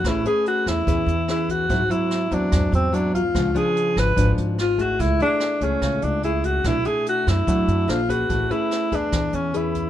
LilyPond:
<<
  \new Staff \with { instrumentName = "Alto saxophone" } { \time 4/4 \key a \major \tempo 4 = 145 e'8 gis'8 fis'8 e'4. e'8 fis'8~ | fis'8 e'4 d'4 bis8 d'8 f'8~ | f'8 gis'4 b'4 r8 eis'8 fis'8 | e'8 d'4 cis'4 d'8 e'8 fis'8 |
e'8 gis'8 fis'8 e'4. f'8 fis'8~ | fis'8 e'4 d'4 cis'8 e'4 | }
  \new Staff \with { instrumentName = "Nylon-string guitar" } { \time 4/4 \key a \major << { <cis' gis' b'>8 <cis' gis' b'>4. <cis' gis' b'>8 r8 <cis' gis' b'>4 | <fis bis e'>8 <fis bis e'>4 <fis bis e'>4. <fis bis e'>8 r8 | <eis b d'>8 <eis b d'>4. <eis b d'>4 r8 <a e' gis'>8~ | <a e' gis'>8 <a e' gis'>4 <a e' gis'>4. <a e' gis'>4 |
<a d' e'>8 <a d' e'>4. <a d' e'>4 <d' a' c''>8 <cis' gis' b'>8~ | <cis' gis' b'>8 <cis' gis' b'>4 <gis' b'>4. <cis' gis' b'>4 | } \\ { a2 e2 | gis,2 gis,2 | cis2 gis,2 | r2 cis2 |
b,2 fis4 r4 | a2 e2 | } >> }
  \new Staff \with { instrumentName = "Upright bass" } { \clef bass \time 4/4 \key a \major a,,8 r4 e,8 e,8 e,4. | gis,,8 r4 e,8 e,8 e,4. | cis,8 r4 gis,,8 gis,,8 gis,,4. | cis,8 r4 cis,8 cis,8 cis,4. |
b,,8 r4 fis,8 fis,8 fis,8 bes,,4 | a,,8 r4 e,8 e,8 e,4. | }
  \new DrumStaff \with { instrumentName = "Drums" } \drummode { \time 4/4 <hh bd ss>8 hh8 hh8 <hh bd ss>8 <hh bd>8 hh8 <hh ss>8 <hh bd>8 | <hh bd>8 hh8 <hh ss>8 <hh bd>8 <hh bd ss>8 hh8 hh8 <hh bd>8 | <hh bd ss>8 hh8 hh8 <hh bd ss>8 <hh bd>8 hh8 <hh ss>8 <hh bd>8 | <hh bd>8 hh8 <hh ss>8 <hh bd>8 <hh bd ss>8 hh8 hh8 <hh bd>8 |
<hh bd ss>8 hh8 hh8 <hh bd ss>8 <hh bd>8 hh8 <hh ss>8 <hh bd>8 | <hh bd>8 hh8 <hh ss>8 <hh bd>8 <hh bd ss>8 hh8 hh8 <hh bd>8 | }
>>